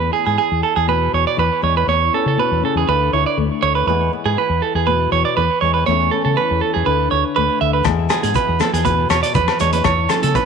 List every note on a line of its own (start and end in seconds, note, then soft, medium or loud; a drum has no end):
0.00 1.86 E2 medium
0.00 1.37 E4 soft
0.00 0.11 B4 medium
0.13 0.25 G#4 medium
0.13 muted nylon-string guitar stroke medium
0.27 0.36 G#2 medium
0.27 0.37 G#4 medium
0.38 0.62 G#4 medium
0.52 0.61 E2 medium
0.63 0.75 A4 medium
0.76 1.08 E2 medium
0.76 0.87 G#4 medium
0.87 1.37 B2 medium
0.87 1.12 B4 medium
1.13 1.24 E2 loud
1.13 1.26 C#5 medium
1.27 1.38 D5 medium
1.37 1.49 E2 medium
1.37 2.87 E3 medium
1.37 1.85 B4 medium
1.37 1.62 B4 medium
1.62 1.84 E2 loud
1.62 1.84 G#3 medium
1.62 1.75 C#5 medium
1.77 1.88 B4 medium
1.87 2.87 E2 medium
1.87 2.09 E2 medium
1.87 2.12 C#5 medium
2.13 2.85 C#4 medium
2.13 2.26 A4 medium
2.26 2.36 C#3 medium
2.26 2.38 A4 medium
2.37 2.62 B2 medium
2.37 2.62 B4 medium
2.51 2.61 E2 medium
2.63 2.87 C#3 medium
2.63 2.76 A4 medium
2.75 2.85 E2 medium
2.75 2.88 G#4 medium
2.88 3.09 D2 medium
2.88 3.87 D3 medium
2.88 3.12 B4 medium
3.13 3.24 D2 medium
3.13 3.89 E4 medium
3.13 3.25 C#5 medium
3.26 3.37 D5 medium
3.37 3.48 D2 loud
3.37 3.84 A3 medium
3.62 3.84 D2 medium
3.62 3.75 C#5 medium
3.75 3.86 B4 medium
3.87 4.08 E2 medium
3.87 4.37 E3 medium
3.87 5.62 G#3 medium
3.87 4.12 B3 medium
3.87 4.11 B4 medium
3.87 muted nylon-string guitar stroke medium
4.13 5.87 B3 medium
4.25 4.35 G#2 medium
4.25 4.37 G#4 medium
4.38 5.37 E3 medium
4.38 4.61 B4 medium
4.49 4.60 E2 medium
4.62 4.74 A4 medium
4.75 5.06 E2 medium
4.75 4.86 G#4 medium
4.87 5.37 B2 medium
4.87 5.10 B4 loud
5.12 5.23 E2 loud
5.12 5.24 C#5 medium
5.25 5.36 D5 medium
5.37 5.48 E2 medium
5.37 5.88 E3 medium
5.37 5.60 B4 medium
5.37 5.84 B4 medium
5.61 5.83 E2 medium
5.61 5.84 G#3 medium
5.61 5.73 C#5 medium
5.74 5.85 B4 medium
5.86 6.86 E2 medium
5.86 6.08 E2 medium
5.86 6.36 E3 medium
5.86 6.84 A3 medium
5.86 6.12 C#4 medium
5.86 6.10 C#5 medium
5.90 7.11 E4 medium
6.11 6.84 C#4 medium
6.11 6.24 A4 medium
6.25 6.35 C#3 medium
6.25 6.36 A4 medium
6.37 6.85 E3 medium
6.37 6.60 B4 medium
6.51 6.60 E2 medium
6.61 6.73 A4 medium
6.74 6.85 E2 medium
6.74 6.85 G#4 medium
6.86 7.08 D2 loud
6.86 7.85 D3 medium
6.86 7.10 B4 medium
7.11 7.23 D2 medium
7.11 7.88 E4 medium
7.11 7.23 C#5 medium
7.36 7.48 D2 medium
7.36 7.83 A3 medium
7.36 7.60 B4 medium
7.61 7.82 D2 medium
7.61 7.73 E5 medium
7.73 7.85 B4 medium
7.84 9.83 E2 medium
7.84 8.07 E2 medium
7.84 8.33 E3 medium
7.84 9.59 G#3 medium
7.84 8.09 B3 medium
7.84 9.35 G#4 medium
7.84 muted clean electric guitar stroke medium
7.84 kick medium
7.84 cross-stick medium
7.84 closed hi-hat soft
7.84 low agogo medium
7.84 shekere medium
8.10 9.85 B3 medium
8.10 8.22 G#4 medium
8.10 cross-stick medium
8.10 closed hi-hat medium
8.10 low conga medium
8.10 low agogo medium
8.10 shekere medium
8.23 8.34 G#2 medium
8.23 8.35 G#4 medium
8.23 closed hi-hat soft
8.23 high conga medium
8.34 9.34 E3 medium
8.34 8.59 B4 medium
8.34 kick medium
8.34 closed hi-hat soft
8.34 shekere medium
8.49 8.59 E2 medium
8.60 8.73 A4 medium
8.60 cross-stick medium
8.60 closed hi-hat medium
8.60 high conga medium
8.60 low conga medium
8.60 low agogo medium
8.60 shekere medium
8.73 9.05 E2 medium
8.73 8.85 G#4 medium
8.73 closed hi-hat soft
8.85 9.35 B2 medium
8.85 9.09 B4 medium
8.85 kick medium
8.85 closed hi-hat soft
8.85 shekere medium
9.10 9.21 E2 loud
9.10 9.22 C#5 medium
9.10 cross-stick medium
9.10 closed hi-hat medium
9.10 low agogo medium
9.10 shekere medium
9.23 9.34 D5 medium
9.23 closed hi-hat soft
9.34 9.47 E2 medium
9.34 10.35 E3 medium
9.34 9.59 B4 medium
9.34 9.82 B4 medium
9.34 kick medium
9.34 closed hi-hat soft
9.34 low conga medium
9.34 shekere medium
9.48 cross-stick medium
9.48 low agogo medium
9.60 9.82 E2 medium
9.60 9.82 G#3 medium
9.60 9.73 C#5 medium
9.60 closed hi-hat soft
9.60 low conga medium
9.60 shekere medium
9.73 9.85 B4 medium
9.73 closed hi-hat soft
9.73 high conga medium
9.84 10.06 E2 medium
9.84 10.09 C#5 medium
9.84 muted nylon-string guitar stroke medium
9.84 kick medium
9.84 cross-stick medium
9.84 closed hi-hat soft
9.84 low agogo medium
9.84 shekere medium
10.09 10.45 C#4 medium
10.09 10.22 A4 medium
10.09 cross-stick medium
10.09 closed hi-hat soft
10.09 low conga medium
10.09 low agogo medium
10.09 shekere medium
10.22 10.34 C#3 medium
10.22 10.34 A4 medium
10.22 closed hi-hat soft
10.22 high conga medium
10.35 10.45 E3 medium
10.35 10.45 B4 medium
10.35 kick medium
10.35 closed hi-hat medium
10.35 shekere medium